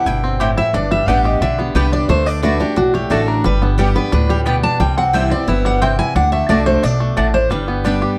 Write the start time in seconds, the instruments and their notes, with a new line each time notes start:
Already playing: five-string banjo G3 G4
0.06 upright bass G1, steel-string acoustic guitar B2 G5, five-string banjo E4
0.24 five-string banjo C4
0.40 steel-string acoustic guitar A2, mandolin C4 E4 C5 G5, five-string banjo G4
0.57 five-string banjo E4, steel-string acoustic guitar E5
0.73 upright bass G1, steel-string acoustic guitar G2 D5, five-string banjo D4
0.91 five-string banjo G3, steel-string acoustic guitar E5
1.07 upright bass A1, steel-string acoustic guitar G3 B3 D4 G4 F#5, mandolin B3 G4 D5 G5, five-string banjo D4
1.25 five-string banjo G4, steel-string acoustic guitar D#5
1.41 upright bass B1, steel-string acoustic guitar D3 E5, five-string banjo D4
1.59 five-string banjo B3, steel-string acoustic guitar G4
1.75 upright bass C2, steel-string acoustic guitar G3 B3 D4 G4 B4, mandolin B3 G4 D5 G5, five-string banjo G4
1.92 five-string banjo D4, steel-string acoustic guitar D5
2.08 upright bass D2, steel-string acoustic guitar D3 C5, five-string banjo A3
2.26 five-string banjo D4, steel-string acoustic guitar D5
2.43 steel-string acoustic guitar D3 A3 D4 F#4 B4, mandolin A3 F#4 D5 A5, five-string banjo D4
2.60 five-string banjo D4, steel-string acoustic guitar D4 F#4 G4
2.76 upright bass B1, steel-string acoustic guitar A2 F#4, five-string banjo D4
2.94 five-string banjo A3, steel-string acoustic guitar G4
3.10 upright bass A1, steel-string acoustic guitar D3 A3 D4 F#4 A4, mandolin A3 F#4 D5 A5, five-string banjo D4
3.28 five-string banjo D4, steel-string acoustic guitar A#4
3.44 upright bass G1, steel-string acoustic guitar G2 B4, five-string banjo G3
3.62 five-string banjo B3, steel-string acoustic guitar D4
3.78 steel-string acoustic guitar G3 B3 D4 G4, five-string banjo G3, mandolin B3 G4 D5 G5
3.95 five-string banjo B3, steel-string acoustic guitar D4 G4 B4
4.12 upright bass D2, steel-string acoustic guitar A2 B4, five-string banjo D4
4.29 five-string banjo G3, steel-string acoustic guitar G4
4.45 steel-string acoustic guitar B2, mandolin B3 G4 D5 G5, five-string banjo B3
4.63 five-string banjo D4, steel-string acoustic guitar A5
4.80 upright bass C2, steel-string acoustic guitar C3 G5, five-string banjo G3
4.97 five-string banjo C4, steel-string acoustic guitar F#5
5.13 steel-string acoustic guitar E3 G3 C4 E4 E5, five-string banjo G3, mandolin C4 E4 C5 G5
5.30 five-string banjo C4, steel-string acoustic guitar C4 E4 D5
5.47 upright bass G1, steel-string acoustic guitar B3 E5, five-string banjo E4
5.65 five-string banjo G3, steel-string acoustic guitar F#5
5.81 steel-string acoustic guitar C3 G5, mandolin C4 E4 C5 G5, five-string banjo C4
5.99 five-string banjo E4, steel-string acoustic guitar G#5
6.15 upright bass D2, steel-string acoustic guitar D3 F#5, five-string banjo D4
6.32 five-string banjo A3, steel-string acoustic guitar E5
6.49 upright bass C2, steel-string acoustic guitar D3 A3 D4 F#4 D5, mandolin A3 F#4 D5 A5, five-string banjo D4
6.66 five-string banjo A3, steel-string acoustic guitar C5
6.83 upright bass B1, steel-string acoustic guitar B2 D5, five-string banjo D4
7.00 five-string banjo A3
7.17 upright bass A1, steel-string acoustic guitar A2, mandolin A3 F#4 D5 A5, five-string banjo D4
7.34 five-string banjo D4, steel-string acoustic guitar C5
7.51 upright bass G1, steel-string acoustic guitar G2 B4, five-string banjo G3
7.68 five-string banjo B3
7.84 steel-string acoustic guitar G3 B3 D4 G4, mandolin B3 G4 D5 G5, five-string banjo D4
8.02 five-string banjo G4